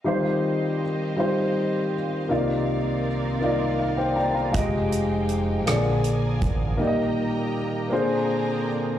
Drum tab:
HH |------|------|xxxxxx|------|
SD |------|------|---r--|------|
BD |------|------|o----o|------|